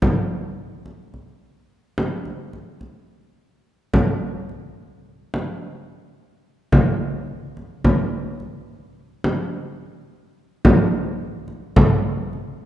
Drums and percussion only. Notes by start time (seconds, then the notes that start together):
0.02 frame drum
0.86 frame drum
1.14 frame drum
1.98 frame drum
2.25 frame drum
2.53 frame drum
2.81 frame drum
3.94 frame drum
4.49 frame drum
5.34 frame drum
6.72 frame drum
7.57 frame drum
7.84 frame drum
8.40 frame drum
9.24 frame drum
10.65 frame drum
11.48 frame drum
11.76 frame drum
12.33 frame drum